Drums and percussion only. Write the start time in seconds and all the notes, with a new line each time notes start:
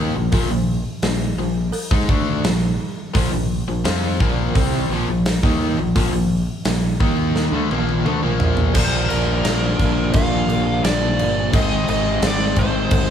0.32 kick, open hi-hat, cowbell
1.02 snare, open hi-hat, cowbell
1.72 open hi-hat, cowbell
1.91 kick
2.09 kick
2.44 snare, open hi-hat, cowbell
3.14 kick, open hi-hat, cowbell
3.85 snare, open hi-hat, cowbell
4.20 kick
4.55 kick, open hi-hat, cowbell
5.26 snare, open hi-hat, cowbell
5.43 kick, snare
5.96 kick, open hi-hat, cowbell
6.65 snare, open hi-hat, cowbell
7.00 kick
7.35 snare, cowbell
7.71 high tom
7.89 high tom
8.05 mid tom, cowbell
8.40 floor tom
8.57 floor tom
8.75 kick, crash, cowbell
9.10 snare, crash
9.45 snare, cowbell, crash
9.79 kick, crash
10.13 kick, cowbell, crash
10.49 cowbell, crash
10.84 snare, cowbell, crash
11.19 crash
11.53 kick, cowbell, crash
11.88 cowbell, crash
12.22 snare, cowbell, crash
12.56 kick, crash
12.91 kick, cowbell, crash